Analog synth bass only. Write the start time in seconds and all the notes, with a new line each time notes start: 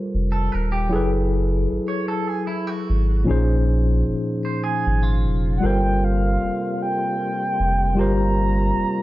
0.15 F1
0.55 D#1
0.93 F#1
1.72 G#1
2.90 G#1
3.30 A#1
4.08 G#1
4.87 G#1
5.25 F1
5.64 G1
6.43 F1
7.60 F1
7.99 G1
8.77 F1